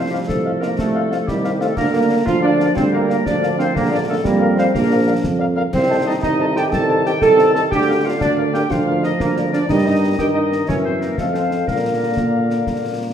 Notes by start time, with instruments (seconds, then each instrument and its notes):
Already playing: tuba C2, euphonium F3, trombone section C4, woodwind section C5
0.11 trombone section G3, woodwind section G4, french horn section C5 D#5 F5, cornet F5
0.28 tuba C2, trombone section A3, woodwind section A4, concert bass drum, snare
0.45 french horn section C5 D#5 F5, cornet F5
0.60 trombone section A#3, woodwind section A#4, french horn section C5 D#5 F5, cornet F5, snare
0.78 tuba C2, trombone section A3, woodwind section A4, concert bass drum, snare
0.94 french horn section C5 D#5 F5, cornet F5
1.11 french horn section C5 D#5 F5, cornet F5, snare
1.27 tuba C2, euphonium D#3, trombone section G3, woodwind section G4, concert bass drum, snare
1.44 french horn section C5 D#5 F5, cornet F5, snare
1.60 trombone section A3, woodwind section A4, french horn section C5 D#5 F5, cornet F5, snare
1.76 tuba D2, euphonium D3, trombone section A#3, woodwind section A#4, concert bass drum, snare, crash
1.92 trombone section A#3, french horn section A#4 D5 F5, woodwind section A#4, cornet F5
2.10 french horn section A#4 D5 F5, cornet F5
2.25 tuba D2, euphonium F3, trombone section F4, woodwind section F5, concert bass drum, snare
2.42 trombone section D4, french horn section A#4 D5 F5, woodwind section D5, cornet F5
2.60 french horn section A#4 D5 F5, cornet F5, snare
2.75 tuba D2, euphonium G3, trombone section C4, woodwind section C5, concert bass drum, snare
2.93 trombone section A#3, french horn section A#4 D5 F5, woodwind section A#4, cornet F5
3.08 french horn section A#4 D5 F5, cornet F5, snare
3.26 tuba D2, euphonium F3, trombone section D4, woodwind section D5, concert bass drum, snare
3.42 french horn section A#4 D5 F5, cornet F5, snare
3.58 trombone section C4, french horn section A#4 D5 F5, woodwind section C5, cornet F5, snare
3.75 tuba A#1, euphonium D3, trombone section A#3, woodwind section A#4, concert bass drum, snare
3.91 trombone section D4, french horn section A#4 D5 F5, woodwind section D5, cornet F5
4.08 trombone section A3, woodwind section A4, french horn section A#4 D5 F5, cornet F5
4.24 tuba F2, euphonium G3, trombone section A#3, woodwind section A#4, concert bass drum, snare
4.41 french horn section A#4 D5 F5, cornet F5
4.57 trombone section C4, french horn section A#4 D5 F5, woodwind section C5, cornet F5, snare
4.74 tuba A#1, euphonium F3, trombone section A#3, woodwind section A#4, concert bass drum, snare
4.91 french horn section A#4 D5 F5, cornet F5
5.06 french horn section A#4 D5 F5, cornet F5
5.24 tuba F2, concert bass drum, snare
5.39 french horn section A#4 D5 F5, cornet F5
5.56 french horn section A#4 D5 F5, cornet F5
5.73 tuba C2, euphonium D#3, trombone section C4, woodwind section C5, concert bass drum, snare, crash
5.89 french horn section A4 C5 D#5, cornet A5
6.06 trombone section D#4, french horn section A4 C5 D#5, woodwind section D#5, cornet A5
6.22 tuba C2, trombone section D#4, woodwind section D#5, concert bass drum, snare
6.39 french horn section A4 C5 D#5, cornet A5
6.56 trombone section G4, french horn section A4 C5 D#5, woodwind section G5, cornet A5, snare
6.72 tuba C2, trombone section A4, woodwind section A5, concert bass drum, snare
6.89 french horn section A4 C5 D#5, cornet A5
7.05 trombone section G4, french horn section A4 C5 D#5, woodwind section G5, cornet A5, snare
7.22 tuba C2, trombone section A4, woodwind section A5, concert bass drum, snare
7.38 french horn section A4 C5 D#5, cornet A5, snare
7.55 trombone section A4, french horn section A4 C5 D#5, cornet A5, woodwind section A5, snare
7.71 tuba D2, euphonium D3, trombone section G4, woodwind section G5, concert bass drum, snare
7.88 french horn section A#4 D5, cornet F5
8.04 trombone section F4, french horn section A#4 D5, cornet F5, woodwind section F5
8.21 tuba D2, trombone section D4, woodwind section D5, concert bass drum, snare
8.37 french horn section A#4 D5, cornet F5
8.53 trombone section G4, french horn section A#4 D5, cornet F5, woodwind section G5, snare
8.70 tuba D2, euphonium F3, trombone section F4, woodwind section F5, concert bass drum, snare
8.87 french horn section A#4 D5, cornet F5
9.03 trombone section D#4, french horn section A#4 D5, woodwind section D#5, cornet F5, snare
9.20 tuba D2, trombone section A#3, woodwind section A#4, concert bass drum, snare
9.36 french horn section A#4 D5, cornet F5, snare
9.52 trombone section D4, french horn section A#4 D5, woodwind section D5, cornet F5, snare
9.68 tuba G2, euphonium G3, trombone section D#4, french horn section A#4, cornet D#5, woodwind section D#5, concert bass drum, snare, crash
9.86 trombone section D#4, woodwind section D#5
10.18 tuba G2, euphonium D#3, trombone section G4, french horn section A#4, cornet D#5, woodwind section G5, concert bass drum, snare
10.35 trombone section D#4, woodwind section D#5
10.52 snare
10.68 tuba F#2, euphonium E3, trombone section C#4, french horn section A#4, woodwind section C#5, cornet E5, concert bass drum, snare
10.85 trombone section C4, woodwind section C5
11.01 trombone section A#3, woodwind section A#4, snare
11.17 tuba F2, euphonium F3, trombone section A3, woodwind section A4, french horn section A4 D#5 F5, cornet F5, concert bass drum, snare
11.34 trombone section C4, woodwind section C5, snare
11.51 snare
11.67 tuba A#2, euphonium D3, trombone section A#3, woodwind section A#4, french horn section A#4 D5 F5, cornet F5, concert bass drum, snare
12.17 tuba A#2, concert bass drum, snare
12.50 snare
12.67 tuba A#2, concert bass drum, snare